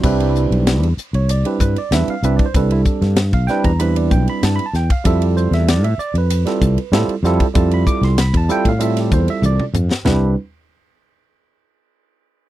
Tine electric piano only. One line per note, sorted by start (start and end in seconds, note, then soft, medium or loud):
0.03 0.87 G3 medium
0.03 0.87 C4 medium
0.03 0.87 D4 medium
0.03 0.88 E4 medium
0.03 0.88 B4 medium
1.15 1.30 C#5 medium
1.31 1.46 D5 medium
1.44 1.76 G3 medium
1.44 1.77 C4 medium
1.44 1.77 D4 medium
1.44 1.77 E4 medium
1.44 1.61 G4 medium
1.44 1.59 B4 medium
1.61 1.76 B4 medium
1.78 1.92 D5 medium
1.93 2.14 G3 medium
1.93 2.14 C4 medium
1.93 2.14 D4 medium
1.93 2.14 E4 medium
1.93 2.15 B4 medium
1.93 2.08 E5 medium
2.10 2.24 F5 medium
2.23 2.45 G3 medium
2.23 2.45 C4 medium
2.23 2.45 D4 medium
2.23 2.45 E4 medium
2.23 2.45 B4 medium
2.23 2.34 E5 medium
2.37 2.46 D5 medium
2.46 2.55 C5 medium
2.55 3.17 G3 medium
2.55 3.17 C4 medium
2.55 3.18 D4 medium
2.55 2.71 E4 medium
2.55 3.18 A4 medium
2.55 2.71 B4 medium
2.72 2.81 E4 medium
3.34 3.49 F5 medium
3.47 3.70 G3 medium
3.47 3.70 C4 medium
3.47 3.70 D4 medium
3.47 3.71 E4 medium
3.47 3.71 B4 medium
3.47 3.64 G5 medium
3.65 3.80 A#5 medium
3.79 4.63 G3 medium
3.79 4.63 C4 medium
3.79 4.63 D4 medium
3.79 4.64 E4 medium
3.79 4.64 B4 medium
3.79 3.96 B5 medium
3.97 4.11 D5 medium
4.11 4.27 G5 medium
4.30 4.43 B5 medium
4.45 4.54 A5 medium
4.56 4.65 B5 loud
4.66 4.75 A5 medium
4.76 4.91 G5 medium
4.92 5.06 F5 medium
5.04 5.88 G3 medium
5.04 5.88 C4 medium
5.04 5.89 E4 medium
5.04 5.89 F4 medium
5.04 5.89 A4 medium
5.04 5.22 E5 medium
5.23 5.37 G4 medium
5.37 5.52 C5 medium
5.54 5.68 E5 medium
5.70 5.85 D5 medium
5.84 5.99 E5 medium
5.99 6.15 D5 medium
6.18 7.07 B4 medium
6.45 6.77 G3 medium
6.45 6.78 C4 medium
6.45 6.78 E4 medium
6.45 6.78 F4 medium
6.45 6.78 A4 medium
6.92 7.14 G3 medium
6.92 7.14 C4 medium
6.92 7.14 E4 medium
6.92 7.14 F4 medium
6.92 7.15 A4 medium
7.24 7.45 G3 medium
7.24 7.46 C4 medium
7.24 7.46 E4 medium
7.24 7.46 F4 medium
7.24 7.46 A4 loud
7.54 8.17 G3 medium
7.54 8.17 C4 medium
7.54 8.17 E4 medium
7.54 8.18 F4 medium
7.54 8.18 A4 medium
7.58 7.72 A5 medium
7.74 7.88 B5 medium
7.87 8.03 D6 loud
8.04 8.19 C6 medium
8.21 8.35 B5 medium
8.37 8.51 A5 medium
8.49 8.70 G3 medium
8.49 8.70 C4 medium
8.49 8.70 E4 medium
8.49 8.71 F4 medium
8.49 8.71 A4 medium
8.49 8.66 G5 loud
8.68 8.82 F5 medium
8.79 9.63 G3 medium
8.79 9.63 C4 medium
8.79 9.63 E4 medium
8.79 9.64 F4 medium
8.79 9.64 A4 medium
8.83 8.98 E5 medium
9.01 9.14 G4 medium
9.13 9.28 C5 medium
9.30 9.44 E5 loud
9.46 9.64 D5 medium
10.05 10.34 G3 medium
10.05 10.34 C4 medium
10.05 10.34 D4 medium
10.05 10.34 E4 medium
10.05 10.34 B4 medium